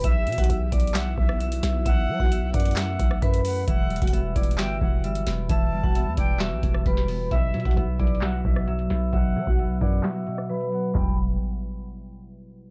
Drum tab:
HH |x-----------x--x--x--x--x-----------x---x---x---x-----------------------x-----x-----x-----------|x-----------------------x-----------x--x--x--x--x-----------x-----------x-----x-----o-----------|x-----------x--x--x--x--x-----------x---x---x---x-----------------------x-----x-----x-----------|x-----------------------x-----------x-----------x-----------x-----------x-----------o-----------|
CP |------------------------------------------------x-----------------------------------------------|------------------------------------------------x-----------------------------------------------|------------------------------------------------x-----------------------------------------------|------------------------------------------------x-----------------------------------------------|
SD |------------------------------------------------o-----------------r-----------------o-----------|------------------------------------------------o-----------------r-----------------------------|------------------------------------------------o-----------------------------------o-----------|------------------------------------------------o-----------------r-----------o-----------------|
FT |------------------------------------------------------------------------------------------------|------------------------------------------------------------------------------------------------|------------------------------------------------------------------------------------------------|------------------------------------------------------------------------------------------------|
BD |o-----------------o-----------------o-----------------------o-----------------------------------|o-----------------o-----------------o-----------------------o-----------o-----------------------|o-----------------o-----------------o-----------------------o-----------------------------------|o-----------------o-----------------o-----------------------o-----------o-----------------------|

HH |x-----------x--x--x--x--x-----------x---x---x---x-----------------------x-----x-----x-----------|x-----------------------x-----------x--x--x--x--x-----------x-----------x-----x-----o-----------|------------------------------------------------------------------------------------------------|
CP |------------------------------------------------x-----------------------------------------------|------------------------------------------------x-----------------------------------------------|x-----------------------------------------------------------------------------------------------|
SD |------------------------------------------------o-----------------r-----------------o-----------|------------------------------------------------o-----------------r-----------------------------|------------------------------------------------------------------------------------------------|
FT |------------------------------------------------------------------------------------------------|------------------------------------------------------------------------------------------------|o-----------------------------------------------------------------------------------------------|
BD |o-----------------o-----------------o-----------------------o-----------------------------------|o-----------------o-----------------o-----------------------------------------------------------|o-----------------------------------------------------------------------------------------------|